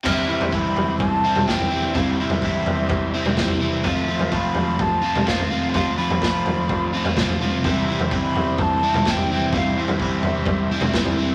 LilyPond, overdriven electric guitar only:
\new Staff \with { instrumentName = "Overdriven electric guitar" } { \time 4/4 \key c \major \tempo 4 = 127 <c e g c' e'>8 <g c' e'>8 <e g c' e'>4. <g c' e'>8 <c e g c' e'>8 <g c' e'>8 | <c e g c' e'>8 <g c' e'>8 <e g c' e'>4. <g c' e'>8 <c e g c' e'>8 <g c' e'>8 | <f a c' f'>8 <a c' f'>8 <f a c' f'>4. <a c' f'>8 <f a c' f'>8 <a c' f'>8 | <f a c' f'>8 <a c' f'>8 <f a c' f'>4. <a c' f'>8 <f a c' f'>8 <a c' f'>8 |
<c e g c' e'>8 <g c' e'>8 <e g c' e'>4. <g c' e'>8 <c e g c' e'>8 <g c' e'>8 | <c e g c' e'>8 <g c' e'>8 <e g c' e'>4. <g c' e'>8 <c e g c' e'>8 <g c' e'>8 | }